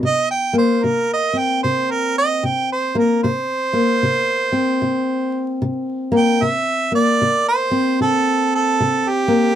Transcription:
0.03 C3 D#5
0.31 G5
0.53 A#3
0.58 C5
0.84 C3 A#4
1.13 D#5
1.33 C4
1.38 G5
1.63 C3 C5
1.90 A#4
2.18 D#5
2.43 C3 G5
2.72 C5
2.95 A#3 A#4
3.23 C3 C5
3.73 A#3
4.03 C3
4.52 C4
4.82 C3
5.62 C3
6.12 A#3
6.16 G5
6.42 C3 E5
6.92 A#3 D5
7.22 C3
7.48 C5
7.71 C4
8.01 C3 A4
8.55 A4
8.80 C3
9.09 G4
9.28 A#3

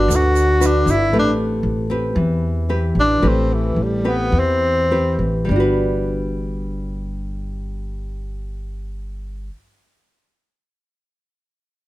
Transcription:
Already playing: D4 F#4 B4
0.08 D2 D3, shaker
0.16 F#4
0.36 shaker
0.60 D4 F#4 B4, shaker
0.66 D4
0.86 G1, shaker
0.91 E4
1.11 A1 A3 C4 G4 B4
1.19 D4
1.63 A1
1.90 C4 G4 B4
2.15 E2 E3
2.69 C4 G4 B4
2.95 A1
3.00 D4
3.22 A1 A3 C4 G4 B4
3.28 C4
3.54 E3
3.76 A1
3.83 G3
4.04 B3 C4 G4 B4
4.32 E2 E3
4.39 C4
4.91 C4 G4 B4
5.19 A1
5.45 G3
5.49 G1 D4
5.56 F#4
5.60 B4

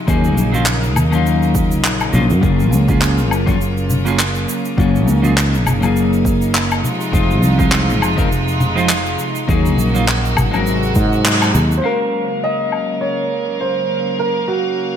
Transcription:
0.07 D#2 C#3 F#3 A#3 C#4 D#4 G#4, kick, shaker
0.24 shaker
0.37 A#1, high conga, shaker
0.52 F#3 A#3 C#4 D#4 F4, high conga, shaker
0.66 clap, shaker
0.83 shaker
0.96 D#2, low conga, low woodblock, shaker
1.10 F#3 A#3 C#4 D#4, high conga, low woodblock, shaker
1.15 F4
1.26 shaker
1.42 shaker
1.55 kick, shaker
1.71 shaker
1.84 A#1, clap, shaker
2.00 low woodblock, shaker
2.12 A#1 F#3 A#3 C#4 D#4 F4, low conga, shaker
2.30 F#2, shaker
2.41 F#1 F#3 A#3 C#4 F4 G#4, kick, shaker
2.60 shaker
2.73 C#2, high conga, shaker
2.88 F#3 A#3 C#4 F4 G#4, kick, high conga, shaker
3.02 clap, shaker
3.18 shaker
3.31 F#1, low woodblock, shaker
3.46 F#3 A#3 C#4 F4 C#5, kick, high conga, shaker
3.61 shaker
3.77 shaker
3.90 low conga, shaker
4.05 F#3 A#3 C#4 F4 G#4, shaker
4.19 clap, shaker
4.35 shaker
4.49 shaker
4.65 shaker
4.77 F#1 F#3 A#3 C#4 D#4 F4 C#5, kick, shaker
4.96 shaker
5.08 C#2, high conga, shaker
5.22 F#3 A#3 C#4 F4 G#4, high conga, shaker
5.38 clap, shaker
5.54 shaker
5.67 F#1, low conga, low woodblock, shaker
5.80 F#3 A#3 C#4 F4, high conga, low woodblock, shaker
5.85 G#4
5.96 shaker
6.13 shaker
6.25 kick, shaker
6.42 shaker
6.55 clap, shaker
6.71 low woodblock, shaker
6.84 C3 F3 G#3 F4, low conga, shaker
7.01 shaker
7.12 F1 F3 G#3 C4 D#4 F4, kick, shaker
7.31 shaker
7.43 C2, high conga, shaker
7.58 F3 G#3 C4 D#4 F4, kick, high conga, shaker
7.72 clap, shaker
7.90 shaker
8.02 F1, low woodblock, shaker
8.16 F3 G#3 C4 D#4 A#4, kick, high conga, shaker
8.32 shaker
8.48 shaker
8.60 low conga, shaker
8.75 F3 G#3 C4 D#4 F4, shaker
8.89 clap, shaker
9.06 shaker
9.19 shaker
9.35 shaker
9.47 D#2 C#3 F#3 A#3 C#4 D#4 F#4 G#4, kick, shaker
9.66 shaker
9.78 A#1, high conga, shaker
9.94 F#3 A#3 C#4 D#4 F4, high conga, shaker
10.08 clap, shaker
10.25 shaker
10.37 G#1, kick, low conga, low woodblock, shaker
10.51 G#3 C4 F#4, high conga, low woodblock, shaker
10.56 A#4
10.66 C3 G#3 D#4, shaker
10.83 shaker
10.95 G#2, kick, shaker
11.13 shaker
11.26 clap, shaker
11.42 low woodblock, shaker
11.55 D#2, low conga, shaker
11.71 shaker
11.78 G#3 C5
11.82 C#3 F#3 A#3 C#4 F#4 A#4 F5, shaker
12.02 shaker
12.14 shaker
12.30 shaker
12.43 D#5, shaker
12.60 shaker
12.72 low woodblock, shaker
12.89 shaker
13.01 C#5, shaker
13.19 shaker
13.31 shaker
13.48 shaker
13.60 C5
13.78 shaker
13.90 shaker
14.07 shaker
14.19 A#4, shaker
14.48 F#4, shaker
14.65 shaker
14.78 shaker

